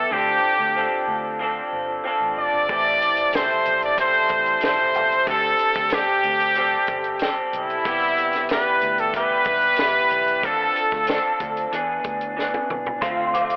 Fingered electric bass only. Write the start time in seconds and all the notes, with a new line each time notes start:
0.11 D2
0.59 D2
1.08 D2
1.73 G1
2.20 A1
2.37 F1
2.53 G1
2.69 A1
3.33 B1
3.66 B1
4.30 A1
4.63 E1
4.95 G1
5.27 D2
5.76 D2
6.24 D2
6.88 G1
7.53 B1
7.85 C2
8.50 D2
8.82 D2
9.46 C2
9.79 G1
10.11 B1
10.44 D2
10.92 D2
11.40 D2
11.73 E2
12.05 D2
12.70 C2
13.02 D2